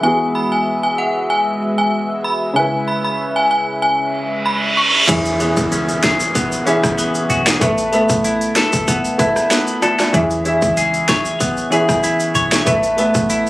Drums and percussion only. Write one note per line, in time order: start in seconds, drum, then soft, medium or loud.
5.09 kick loud
5.09 closed hi-hat medium
5.09 crash medium
5.09 shaker medium
5.25 closed hi-hat medium
5.25 shaker medium
5.40 closed hi-hat medium
5.40 shaker soft
5.57 kick loud
5.57 shaker medium
5.72 closed hi-hat medium
5.72 shaker medium
5.89 closed hi-hat medium
5.89 shaker medium
6.03 kick medium
6.03 snare loud
6.03 closed hi-hat medium
6.20 shaker medium
6.35 kick medium
6.35 closed hi-hat medium
6.35 shaker medium
6.52 shaker medium
6.67 closed hi-hat medium
6.67 shaker medium
6.83 kick loud
6.83 cross-stick medium
6.83 shaker medium
6.98 closed hi-hat medium
6.98 shaker medium
7.15 closed hi-hat medium
7.15 shaker soft
7.30 closed hi-hat medium
7.30 shaker medium
7.47 snare loud
7.47 shaker medium
7.61 kick loud
7.61 closed hi-hat medium
7.61 shaker medium
7.78 closed hi-hat medium
7.78 shaker medium
7.93 closed hi-hat medium
7.93 shaker soft
8.09 kick loud
8.09 shaker medium
8.24 closed hi-hat medium
8.24 shaker medium
8.41 closed hi-hat medium
8.41 shaker medium
8.56 snare loud
8.56 closed hi-hat medium
8.73 kick medium
8.73 shaker medium
8.88 kick medium
8.88 closed hi-hat medium
8.88 shaker medium
9.05 shaker medium
9.19 kick medium
9.19 closed hi-hat medium
9.19 shaker medium
9.36 cross-stick medium
9.36 shaker medium
9.51 snare loud
9.51 closed hi-hat medium
9.51 shaker medium
9.67 closed hi-hat medium
9.67 shaker soft
9.82 closed hi-hat medium
9.82 high timbale medium
9.82 shaker medium
9.99 snare medium
9.99 high timbale medium
9.99 shaker medium
10.14 kick loud
10.14 closed hi-hat medium
10.14 shaker medium
10.30 closed hi-hat medium
10.30 shaker medium
10.45 closed hi-hat medium
10.45 shaker soft
10.62 kick loud
10.62 shaker medium
10.77 closed hi-hat medium
10.77 shaker medium
10.94 closed hi-hat medium
10.94 shaker soft
11.09 kick medium
11.09 snare loud
11.09 closed hi-hat medium
11.25 shaker medium
11.40 kick medium
11.40 closed hi-hat medium
11.40 shaker medium
11.57 shaker medium
11.72 closed hi-hat medium
11.72 shaker medium
11.89 kick medium
11.89 cross-stick medium
11.89 shaker medium
12.03 closed hi-hat medium
12.03 shaker medium
12.20 closed hi-hat medium
12.20 shaker soft
12.35 closed hi-hat medium
12.35 shaker medium
12.52 snare loud
12.52 shaker medium
12.66 kick loud
12.66 closed hi-hat medium
12.66 shaker medium
12.83 closed hi-hat medium
12.83 shaker medium
12.98 closed hi-hat medium
12.98 shaker soft
13.14 kick loud
13.14 shaker medium
13.30 closed hi-hat medium
13.30 shaker medium